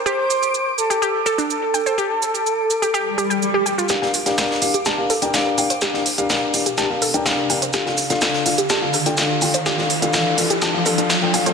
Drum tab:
HH |----------------|----------------|x-oxx-oxx-oxx-ox|x-oxx-oxx-oxx-ox|
SH |x-xxx-xxx-xxx-xx|x-xxx-xxx-xxx-xx|x-xxx-xxx-xxx-xx|x-xxx-xxx-xxx-xx|
SD |----------------|----------------|oo-ooo--o---o---|oo--o---o---o---|

HH |x-oxx-oxx-oxx-ox|x-oxx-oxx-oxx-ox|
SH |x-xxx-xxx-xxx-xx|x-xxx-xxx-xxx-xx|
SD |oo-ooo--o---o---|oo--o---o---o---|